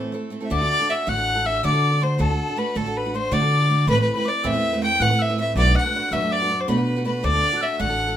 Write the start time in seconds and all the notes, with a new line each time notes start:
Already playing: A2 E3 A3 C4 E4 A4 C5
0.12 A3 C4 E4 A4
0.30 A3 C4 E4 A4
0.41 A3 C4 E4 A4
0.45 E5
0.50 D2 D3 A3 D4 F#4 A4 D5 D6
0.60 D4 F#4 A4
0.71 D6
0.79 D4 A4
0.89 A3 D4 F#4 A4 E5 E6
1.07 A1 D3 A3 D4 F#4 A4 F#5 F#6
1.17 D4 F#4 A4
1.28 F#6
1.35 D4 F#4 A4
1.45 A3 D4 F#4 A4 E5 E6
1.63 D3 A3 D4 F#4 A4 D5 D6
1.73 D4 F#4 A4
1.91 D4 F#4 A4
2.00 A3 D4 F#4 A4 C5 C6
2.18 D2 D3 A3 D4 F#4 A4 A5
2.29 D4 F#4 A4
2.40 A5
2.48 D4 F#4 A4
2.56 A3 D4 F#4 A4 B4 B5
2.75 A1 D3 A3 D4 F#4 A4 A5
2.86 D4 F#4 A4
2.97 B4 B5
3.05 D4 F#4 A4
3.14 A3 D4 F#4 A4 C5 C6
3.31 D3 A3 D4 F#4 A4 D5 D6
3.41 D4 F#4 A4
3.60 D4 F#4 A4
3.69 A3 D4 F#4 A4
3.87 A1 A2 E3 A3 C4 E4 B4 B5
3.97 A3 C4 E4 B4
4.02 B4
4.13 C4 E4 B4 B5
4.18 A3
4.24 A3 C4 E4 B4 D5 D6
4.43 E2 A2 E3 A3 C4 E4 B4 E5 E6
4.54 A3 C4 E4 B4
4.73 A3 C4 E4 B4
4.82 A3 C4 E4 B4 G5
5.00 A2 E3 A3 C4 E4 B4 F#5 F#6
5.10 A3 C4 E4 B4
5.19 E5 E6
5.29 A3 C4 E4 B4
5.38 A3 C4 E4 B4 E5
5.55 B1 B2 F#3 A3 D4 F#4 B4 D5 D6
5.66 A3 D4 F#4 B4
5.75 F#5 F#6
5.85 A3 D4 F#4 B4
5.95 A3 D4 F#4 B4
6.11 F#2 B2 F#3 A3 D4 F#4 B4 E5 E6
6.22 A3 D4 F#4 B4
6.31 D5 D6
6.41 A3 D4 F#4 B4
6.50 A3 D4 F#4 B4
6.60 C5
6.68 B2 F#3 A3 D4 F#4 B4 B5
6.77 A3 D4 F#4 B4
6.96 A3 D4 F#4 B4
7.04 A3 D4 F#4 B4 B5
7.23 D2 D3 A3 D4 F#4 A4 D5 D6
7.33 D4 F#4 A4
7.52 D4 F#4 A4 F#6
7.61 A3 D4 F#4 E5 E6
7.79 A1 D3 A3 D4 F#4 A4 F#5 F#6
7.89 D4 F#4 A4
8.08 D4 F#4 A4